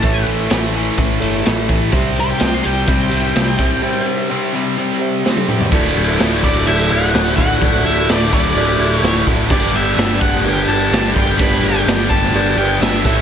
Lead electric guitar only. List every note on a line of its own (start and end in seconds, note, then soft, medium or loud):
0.00 0.24 A5 loud
2.20 2.30 C5 loud
2.31 2.41 G5 medium
2.43 2.53 G5 loud
2.54 2.65 C6 medium
2.66 4.03 G5 loud
6.44 6.68 D5 medium
6.67 6.90 E5 loud
6.91 7.36 F#5 loud
7.37 7.81 F#5 loud
7.86 8.10 E5 loud
8.11 8.32 D5 medium
8.34 8.95 D5 medium
8.95 9.24 C#5 medium
9.52 9.76 D5 medium
9.76 10.21 E5 medium
10.21 10.44 F#5 medium
10.45 10.69 G5 loud
10.68 11.12 A5 loud
11.14 11.39 G5 medium
11.37 11.63 B5 loud
11.64 12.12 G5 loud
12.09 12.58 A5 loud
12.58 12.80 G5 medium
12.81 13.14 E5 medium